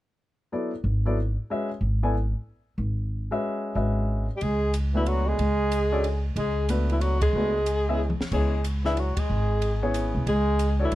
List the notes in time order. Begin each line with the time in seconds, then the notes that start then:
0.52 F#3 B3 E4 A4 D5
0.84 G#1
1.05 F#3 B3 E4 A4 D5
1.50 G#3 C#4 F#4 B4 E5
1.81 G#1
2.03 B3 E4 A4 D5 G#5
2.78 G#1
3.31 G#3 C#4 F#4 B4 E5
3.75 G#1 G#3 C#4 F#4 B4 E5
4.35 G3 G4
4.41 C#2 G#3 G#4, ride
4.74 hi-hat pedal, ride
4.93 E3 A3 B3 D4 E4 F#4 B4
5.06 F#3 F#4, ride
5.26 G#3 G#4
5.39 C#2, ride
5.72 hi-hat pedal, ride
5.92 C#4 D4 F#4 A4 D5
6.04 ride
6.36 C#2 G#3 G#4, ride
6.69 A3 B3 D4 F#4 B4, hi-hat pedal, ride
6.89 E3 E4, ride
7.01 F#3 F#4, ride
7.21 G#3 G#4, kick, ride
7.33 C#2 A3 B3 D4 F#4 B4
7.66 hi-hat pedal, ride
7.89 B3 C#4 E4 G#4 E5
8.10 high tom
8.20 muted upright bass stroke, snare
8.32 C#2 G#3 B3 C#4 E4 G#4 C#5, kick, crash
8.64 hi-hat pedal, ride
8.84 E3 D4 E4 G#4 B4 E5, snare
8.97 F#3 F#4, ride
9.17 G#3 G#4, muted upright bass stroke, kick, ride
9.30 G#1
9.62 ride
9.83 B3 C#4 E4 G#4 C#5
9.94 hi-hat pedal, ride
10.15 C2
10.26 C#2 G#3 G#4, ride
10.59 hi-hat pedal, ride
10.79 E3 D4 F#4 A4 C#5 D5
10.85 E4
10.92 ride